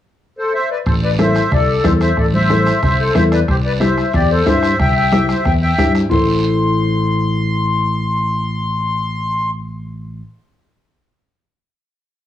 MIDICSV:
0, 0, Header, 1, 6, 480
1, 0, Start_track
1, 0, Key_signature, 0, "minor"
1, 0, Tempo, 328587
1, 1261, Time_signature, 4, 2, 24, 8
1, 17911, End_track
2, 0, Start_track
2, 0, Title_t, "Accordion"
2, 0, Program_c, 0, 21
2, 556, Note_on_c, 0, 69, 61
2, 556, Note_on_c, 0, 72, 74
2, 766, Note_off_c, 0, 72, 0
2, 772, Note_off_c, 0, 69, 0
2, 788, Note_on_c, 0, 72, 73
2, 788, Note_on_c, 0, 76, 97
2, 1008, Note_off_c, 0, 72, 0
2, 1008, Note_off_c, 0, 76, 0
2, 1033, Note_on_c, 0, 74, 71
2, 1037, Note_on_c, 0, 71, 57
2, 1138, Note_off_c, 0, 74, 0
2, 1142, Note_off_c, 0, 71, 0
2, 1265, Note_on_c, 0, 72, 73
2, 1268, Note_on_c, 0, 69, 60
2, 1372, Note_off_c, 0, 72, 0
2, 1375, Note_off_c, 0, 69, 0
2, 1514, Note_on_c, 0, 74, 72
2, 1520, Note_on_c, 0, 71, 59
2, 1619, Note_off_c, 0, 74, 0
2, 1624, Note_off_c, 0, 71, 0
2, 1767, Note_on_c, 0, 76, 88
2, 1769, Note_on_c, 0, 72, 63
2, 2202, Note_off_c, 0, 72, 0
2, 2244, Note_on_c, 0, 74, 88
2, 2246, Note_on_c, 0, 69, 65
2, 2248, Note_off_c, 0, 76, 0
2, 2681, Note_off_c, 0, 69, 0
2, 2709, Note_on_c, 0, 72, 81
2, 2719, Note_on_c, 0, 69, 62
2, 2727, Note_off_c, 0, 74, 0
2, 2815, Note_off_c, 0, 72, 0
2, 2823, Note_off_c, 0, 69, 0
2, 2948, Note_on_c, 0, 76, 85
2, 2958, Note_on_c, 0, 72, 73
2, 3168, Note_off_c, 0, 76, 0
2, 3173, Note_off_c, 0, 72, 0
2, 3187, Note_on_c, 0, 74, 84
2, 3194, Note_on_c, 0, 69, 66
2, 3294, Note_off_c, 0, 74, 0
2, 3299, Note_off_c, 0, 69, 0
2, 3426, Note_on_c, 0, 76, 101
2, 3434, Note_on_c, 0, 72, 70
2, 4097, Note_off_c, 0, 72, 0
2, 4113, Note_off_c, 0, 76, 0
2, 4135, Note_on_c, 0, 76, 99
2, 4149, Note_on_c, 0, 72, 75
2, 4359, Note_off_c, 0, 72, 0
2, 4360, Note_off_c, 0, 76, 0
2, 4381, Note_on_c, 0, 72, 84
2, 4395, Note_on_c, 0, 69, 74
2, 4603, Note_off_c, 0, 72, 0
2, 4611, Note_off_c, 0, 69, 0
2, 4617, Note_on_c, 0, 76, 99
2, 4628, Note_on_c, 0, 72, 69
2, 4725, Note_off_c, 0, 76, 0
2, 4734, Note_off_c, 0, 72, 0
2, 4859, Note_on_c, 0, 74, 88
2, 4868, Note_on_c, 0, 71, 73
2, 4967, Note_off_c, 0, 74, 0
2, 4974, Note_off_c, 0, 71, 0
2, 5096, Note_on_c, 0, 72, 87
2, 5105, Note_on_c, 0, 67, 74
2, 5205, Note_off_c, 0, 72, 0
2, 5211, Note_off_c, 0, 67, 0
2, 5339, Note_on_c, 0, 74, 85
2, 5348, Note_on_c, 0, 71, 68
2, 5446, Note_off_c, 0, 74, 0
2, 5454, Note_off_c, 0, 71, 0
2, 5576, Note_on_c, 0, 76, 81
2, 5580, Note_on_c, 0, 72, 67
2, 6025, Note_off_c, 0, 72, 0
2, 6048, Note_on_c, 0, 74, 94
2, 6067, Note_on_c, 0, 67, 81
2, 6070, Note_off_c, 0, 76, 0
2, 6285, Note_off_c, 0, 67, 0
2, 6293, Note_on_c, 0, 72, 82
2, 6300, Note_off_c, 0, 74, 0
2, 6303, Note_on_c, 0, 69, 65
2, 6517, Note_off_c, 0, 72, 0
2, 6523, Note_off_c, 0, 69, 0
2, 6527, Note_on_c, 0, 76, 95
2, 6541, Note_on_c, 0, 72, 82
2, 6985, Note_off_c, 0, 72, 0
2, 6995, Note_off_c, 0, 76, 0
2, 7010, Note_on_c, 0, 79, 106
2, 7017, Note_on_c, 0, 76, 71
2, 7221, Note_off_c, 0, 79, 0
2, 7232, Note_off_c, 0, 76, 0
2, 7243, Note_on_c, 0, 79, 110
2, 7254, Note_on_c, 0, 76, 79
2, 7701, Note_off_c, 0, 76, 0
2, 7735, Note_on_c, 0, 76, 82
2, 7743, Note_off_c, 0, 79, 0
2, 7745, Note_on_c, 0, 72, 66
2, 7946, Note_off_c, 0, 76, 0
2, 7953, Note_on_c, 0, 79, 106
2, 7963, Note_off_c, 0, 72, 0
2, 7968, Note_on_c, 0, 76, 76
2, 8066, Note_off_c, 0, 79, 0
2, 8077, Note_off_c, 0, 76, 0
2, 8207, Note_on_c, 0, 79, 103
2, 8216, Note_on_c, 0, 76, 79
2, 8657, Note_off_c, 0, 79, 0
2, 8661, Note_off_c, 0, 76, 0
2, 8922, Note_on_c, 0, 84, 92
2, 13880, Note_off_c, 0, 84, 0
2, 17911, End_track
3, 0, Start_track
3, 0, Title_t, "Clean electric guitar"
3, 0, Program_c, 1, 27
3, 1733, Note_on_c, 1, 64, 69
3, 1738, Note_on_c, 1, 69, 60
3, 1749, Note_on_c, 1, 72, 79
3, 2073, Note_off_c, 1, 64, 0
3, 2077, Note_off_c, 1, 69, 0
3, 2079, Note_off_c, 1, 72, 0
3, 2692, Note_on_c, 1, 64, 70
3, 2697, Note_on_c, 1, 69, 68
3, 2705, Note_on_c, 1, 72, 73
3, 3032, Note_off_c, 1, 64, 0
3, 3036, Note_off_c, 1, 69, 0
3, 3037, Note_off_c, 1, 72, 0
3, 3654, Note_on_c, 1, 64, 64
3, 3659, Note_on_c, 1, 69, 59
3, 3671, Note_on_c, 1, 72, 75
3, 3993, Note_off_c, 1, 64, 0
3, 3996, Note_off_c, 1, 69, 0
3, 3999, Note_off_c, 1, 72, 0
3, 4606, Note_on_c, 1, 64, 69
3, 4606, Note_on_c, 1, 69, 69
3, 4616, Note_on_c, 1, 72, 79
3, 4946, Note_off_c, 1, 64, 0
3, 4948, Note_off_c, 1, 69, 0
3, 4953, Note_off_c, 1, 72, 0
3, 5558, Note_on_c, 1, 64, 64
3, 5564, Note_on_c, 1, 67, 61
3, 5571, Note_on_c, 1, 72, 75
3, 5903, Note_off_c, 1, 64, 0
3, 5907, Note_off_c, 1, 67, 0
3, 5909, Note_off_c, 1, 72, 0
3, 6522, Note_on_c, 1, 64, 69
3, 6529, Note_on_c, 1, 67, 60
3, 6534, Note_on_c, 1, 72, 76
3, 6865, Note_off_c, 1, 64, 0
3, 6869, Note_off_c, 1, 67, 0
3, 6870, Note_off_c, 1, 72, 0
3, 7487, Note_on_c, 1, 64, 62
3, 7494, Note_on_c, 1, 67, 62
3, 7503, Note_on_c, 1, 72, 77
3, 7827, Note_off_c, 1, 64, 0
3, 7831, Note_off_c, 1, 67, 0
3, 7833, Note_off_c, 1, 72, 0
3, 8449, Note_on_c, 1, 64, 65
3, 8457, Note_on_c, 1, 67, 57
3, 8463, Note_on_c, 1, 72, 76
3, 8787, Note_off_c, 1, 64, 0
3, 8792, Note_off_c, 1, 67, 0
3, 8793, Note_off_c, 1, 72, 0
3, 8909, Note_on_c, 1, 64, 78
3, 8937, Note_on_c, 1, 69, 72
3, 8964, Note_on_c, 1, 72, 82
3, 14897, Note_off_c, 1, 64, 0
3, 14910, Note_off_c, 1, 69, 0
3, 14924, Note_off_c, 1, 72, 0
3, 17911, End_track
4, 0, Start_track
4, 0, Title_t, "Fingered electric bass"
4, 0, Program_c, 2, 33
4, 1257, Note_on_c, 2, 33, 82
4, 2027, Note_off_c, 2, 33, 0
4, 2219, Note_on_c, 2, 36, 84
4, 2603, Note_off_c, 2, 36, 0
4, 2694, Note_on_c, 2, 40, 95
4, 3081, Note_off_c, 2, 40, 0
4, 3175, Note_on_c, 2, 33, 92
4, 3944, Note_off_c, 2, 33, 0
4, 4134, Note_on_c, 2, 36, 78
4, 4520, Note_off_c, 2, 36, 0
4, 4612, Note_on_c, 2, 40, 93
4, 4998, Note_off_c, 2, 40, 0
4, 5091, Note_on_c, 2, 36, 94
4, 5861, Note_off_c, 2, 36, 0
4, 6050, Note_on_c, 2, 40, 80
4, 6436, Note_off_c, 2, 40, 0
4, 6530, Note_on_c, 2, 43, 92
4, 6916, Note_off_c, 2, 43, 0
4, 7008, Note_on_c, 2, 36, 94
4, 7778, Note_off_c, 2, 36, 0
4, 7972, Note_on_c, 2, 40, 89
4, 8357, Note_off_c, 2, 40, 0
4, 8453, Note_on_c, 2, 43, 85
4, 8837, Note_off_c, 2, 43, 0
4, 8929, Note_on_c, 2, 33, 83
4, 14907, Note_off_c, 2, 33, 0
4, 17911, End_track
5, 0, Start_track
5, 0, Title_t, "Two-headed folk drums"
5, 1259, Note_on_c, 9, 36, 86
5, 1262, Note_on_c, 9, 37, 79
5, 1405, Note_off_c, 9, 36, 0
5, 1408, Note_off_c, 9, 37, 0
5, 1740, Note_on_c, 9, 37, 87
5, 1886, Note_off_c, 9, 37, 0
5, 1984, Note_on_c, 9, 37, 81
5, 2130, Note_off_c, 9, 37, 0
5, 2219, Note_on_c, 9, 36, 79
5, 2223, Note_on_c, 9, 37, 80
5, 2365, Note_off_c, 9, 36, 0
5, 2369, Note_off_c, 9, 37, 0
5, 2698, Note_on_c, 9, 36, 72
5, 2699, Note_on_c, 9, 37, 85
5, 2844, Note_off_c, 9, 36, 0
5, 2845, Note_off_c, 9, 37, 0
5, 2938, Note_on_c, 9, 37, 84
5, 3084, Note_off_c, 9, 37, 0
5, 3174, Note_on_c, 9, 37, 75
5, 3177, Note_on_c, 9, 36, 79
5, 3320, Note_off_c, 9, 37, 0
5, 3323, Note_off_c, 9, 36, 0
5, 3651, Note_on_c, 9, 37, 78
5, 3797, Note_off_c, 9, 37, 0
5, 3898, Note_on_c, 9, 37, 81
5, 4044, Note_off_c, 9, 37, 0
5, 4133, Note_on_c, 9, 37, 74
5, 4135, Note_on_c, 9, 36, 72
5, 4279, Note_off_c, 9, 37, 0
5, 4281, Note_off_c, 9, 36, 0
5, 4608, Note_on_c, 9, 37, 85
5, 4754, Note_off_c, 9, 37, 0
5, 4851, Note_on_c, 9, 37, 82
5, 4998, Note_off_c, 9, 37, 0
5, 5091, Note_on_c, 9, 37, 77
5, 5094, Note_on_c, 9, 36, 83
5, 5237, Note_off_c, 9, 37, 0
5, 5240, Note_off_c, 9, 36, 0
5, 5569, Note_on_c, 9, 37, 79
5, 5715, Note_off_c, 9, 37, 0
5, 5812, Note_on_c, 9, 37, 85
5, 5958, Note_off_c, 9, 37, 0
5, 6050, Note_on_c, 9, 37, 74
5, 6052, Note_on_c, 9, 36, 76
5, 6196, Note_off_c, 9, 37, 0
5, 6198, Note_off_c, 9, 36, 0
5, 6529, Note_on_c, 9, 37, 76
5, 6530, Note_on_c, 9, 36, 63
5, 6675, Note_off_c, 9, 37, 0
5, 6676, Note_off_c, 9, 36, 0
5, 6763, Note_on_c, 9, 37, 83
5, 6909, Note_off_c, 9, 37, 0
5, 7009, Note_on_c, 9, 36, 85
5, 7009, Note_on_c, 9, 37, 83
5, 7155, Note_off_c, 9, 36, 0
5, 7155, Note_off_c, 9, 37, 0
5, 7490, Note_on_c, 9, 37, 84
5, 7636, Note_off_c, 9, 37, 0
5, 7729, Note_on_c, 9, 37, 84
5, 7875, Note_off_c, 9, 37, 0
5, 7970, Note_on_c, 9, 37, 78
5, 7972, Note_on_c, 9, 36, 76
5, 8116, Note_off_c, 9, 37, 0
5, 8118, Note_off_c, 9, 36, 0
5, 8453, Note_on_c, 9, 36, 76
5, 8458, Note_on_c, 9, 37, 88
5, 8599, Note_off_c, 9, 36, 0
5, 8604, Note_off_c, 9, 37, 0
5, 8694, Note_on_c, 9, 37, 85
5, 8840, Note_off_c, 9, 37, 0
5, 8932, Note_on_c, 9, 36, 91
5, 9078, Note_off_c, 9, 36, 0
5, 17911, End_track
6, 0, Start_track
6, 0, Title_t, "Drums"
6, 1253, Note_on_c, 9, 74, 75
6, 1399, Note_off_c, 9, 74, 0
6, 1732, Note_on_c, 9, 63, 80
6, 1738, Note_on_c, 9, 73, 68
6, 1878, Note_off_c, 9, 63, 0
6, 1884, Note_off_c, 9, 73, 0
6, 1970, Note_on_c, 9, 73, 70
6, 2116, Note_off_c, 9, 73, 0
6, 2214, Note_on_c, 9, 64, 82
6, 2218, Note_on_c, 9, 74, 68
6, 2360, Note_off_c, 9, 64, 0
6, 2364, Note_off_c, 9, 74, 0
6, 2691, Note_on_c, 9, 73, 70
6, 2700, Note_on_c, 9, 63, 79
6, 2837, Note_off_c, 9, 73, 0
6, 2847, Note_off_c, 9, 63, 0
6, 2933, Note_on_c, 9, 73, 65
6, 3079, Note_off_c, 9, 73, 0
6, 3176, Note_on_c, 9, 74, 76
6, 3322, Note_off_c, 9, 74, 0
6, 3417, Note_on_c, 9, 63, 72
6, 3563, Note_off_c, 9, 63, 0
6, 3655, Note_on_c, 9, 73, 61
6, 3656, Note_on_c, 9, 63, 78
6, 3801, Note_off_c, 9, 73, 0
6, 3802, Note_off_c, 9, 63, 0
6, 3894, Note_on_c, 9, 73, 71
6, 4040, Note_off_c, 9, 73, 0
6, 4130, Note_on_c, 9, 74, 72
6, 4140, Note_on_c, 9, 64, 84
6, 4276, Note_off_c, 9, 74, 0
6, 4286, Note_off_c, 9, 64, 0
6, 4615, Note_on_c, 9, 73, 65
6, 4618, Note_on_c, 9, 63, 79
6, 4618, Note_on_c, 9, 64, 71
6, 4761, Note_off_c, 9, 73, 0
6, 4764, Note_off_c, 9, 63, 0
6, 4764, Note_off_c, 9, 64, 0
6, 4856, Note_on_c, 9, 73, 73
6, 5002, Note_off_c, 9, 73, 0
6, 5096, Note_on_c, 9, 74, 76
6, 5243, Note_off_c, 9, 74, 0
6, 5567, Note_on_c, 9, 73, 66
6, 5576, Note_on_c, 9, 63, 75
6, 5713, Note_off_c, 9, 73, 0
6, 5723, Note_off_c, 9, 63, 0
6, 5808, Note_on_c, 9, 73, 69
6, 5955, Note_off_c, 9, 73, 0
6, 6042, Note_on_c, 9, 74, 76
6, 6053, Note_on_c, 9, 64, 76
6, 6188, Note_off_c, 9, 74, 0
6, 6199, Note_off_c, 9, 64, 0
6, 6525, Note_on_c, 9, 73, 69
6, 6529, Note_on_c, 9, 63, 77
6, 6671, Note_off_c, 9, 73, 0
6, 6675, Note_off_c, 9, 63, 0
6, 6774, Note_on_c, 9, 73, 75
6, 6920, Note_off_c, 9, 73, 0
6, 7006, Note_on_c, 9, 64, 77
6, 7010, Note_on_c, 9, 74, 73
6, 7152, Note_off_c, 9, 64, 0
6, 7156, Note_off_c, 9, 74, 0
6, 7487, Note_on_c, 9, 63, 79
6, 7490, Note_on_c, 9, 73, 69
6, 7633, Note_off_c, 9, 63, 0
6, 7636, Note_off_c, 9, 73, 0
6, 7728, Note_on_c, 9, 73, 65
6, 7874, Note_off_c, 9, 73, 0
6, 7966, Note_on_c, 9, 64, 73
6, 7968, Note_on_c, 9, 74, 68
6, 8112, Note_off_c, 9, 64, 0
6, 8114, Note_off_c, 9, 74, 0
6, 8451, Note_on_c, 9, 63, 75
6, 8452, Note_on_c, 9, 73, 78
6, 8598, Note_off_c, 9, 63, 0
6, 8598, Note_off_c, 9, 73, 0
6, 8691, Note_on_c, 9, 73, 72
6, 8837, Note_off_c, 9, 73, 0
6, 8926, Note_on_c, 9, 74, 104
6, 8933, Note_on_c, 9, 64, 94
6, 9072, Note_off_c, 9, 74, 0
6, 9079, Note_off_c, 9, 64, 0
6, 17911, End_track
0, 0, End_of_file